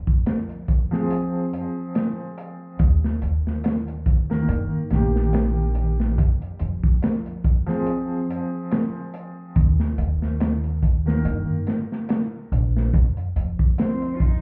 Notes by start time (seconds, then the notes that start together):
Already playing: F2
0.07 kick
0.26 snare, closed hi-hat, maracas
0.49 closed hi-hat
0.68 kick, closed hi-hat
0.91 F3 C4 G#4, snare
1.10 closed hi-hat
1.53 closed hi-hat
1.95 snare, closed hi-hat, maracas
2.38 closed hi-hat
2.79 D#2, kick, closed hi-hat
3.04 snare
3.22 D#2, closed hi-hat
3.47 snare
3.64 snare, closed hi-hat, maracas
3.88 closed hi-hat
4.06 kick, closed hi-hat
4.30 D#3 A#3 A#4, snare
4.48 G2, closed hi-hat
4.90 A#1 D#3 A#3 G4, snare, closed hi-hat
5.16 snare
5.33 snare, closed hi-hat, maracas
5.75 closed hi-hat
6.00 snare
6.18 F2, kick, closed hi-hat
6.42 closed hi-hat
6.59 F2, closed hi-hat
6.83 kick
7.02 snare, closed hi-hat, maracas
7.26 closed hi-hat
7.44 kick, closed hi-hat
7.66 F3 C4 G#4, snare
7.86 closed hi-hat
8.30 closed hi-hat
8.71 snare, closed hi-hat, maracas
9.14 closed hi-hat
9.56 D#2, kick, closed hi-hat
9.80 snare
9.98 D#2, closed hi-hat
10.22 snare
10.40 snare, closed hi-hat, maracas
10.64 closed hi-hat
10.83 kick, closed hi-hat
11.06 D#3 A#3 A#4, snare
11.25 G2, closed hi-hat
11.67 snare, closed hi-hat
11.92 snare
12.09 snare, closed hi-hat, maracas
12.52 A#1, closed hi-hat
12.77 snare
12.94 F2, kick, closed hi-hat
13.17 closed hi-hat
13.36 F2, closed hi-hat
13.59 kick
13.78 C4, snare, closed hi-hat, maracas
14.02 closed hi-hat
14.16 F4
14.20 D#4, kick, closed hi-hat